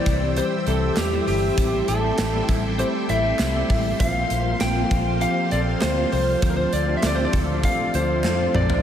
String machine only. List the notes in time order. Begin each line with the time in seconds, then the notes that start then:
Already playing: C5 E5 G5 E6
1.57 A4 G5 C6
4.00 A#3 C5 F5
6.43 A4 D5